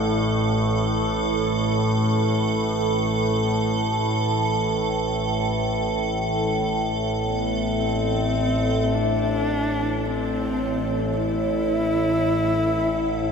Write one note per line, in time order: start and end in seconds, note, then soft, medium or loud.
0.00 8.89 A1 medium
0.00 8.89 A2 medium
0.00 8.88 A4 medium
7.23 7.81 B3 medium
7.79 8.95 C4 medium
8.89 13.32 A1 medium
8.89 13.32 A2 medium
8.89 13.32 A4 medium
8.94 10.07 D4 medium
10.05 11.15 C4 medium
11.17 13.32 E4 loud